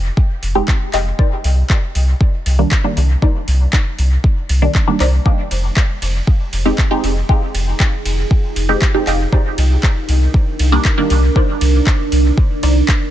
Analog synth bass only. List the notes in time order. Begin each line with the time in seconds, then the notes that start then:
Already playing: F1
0.43 F1
0.93 F1
1.44 C2
1.95 C2
2.46 C2
2.97 C2
3.48 C2
3.99 C2
4.50 C2
5.00 C2
5.51 F1
6.02 F1
6.53 F1
7.04 F1
7.55 F1
8.05 F1
8.56 F1
9.07 F1
9.58 C2
10.09 C2
10.60 C2
11.11 C2
11.61 C2
12.12 C2
12.63 C2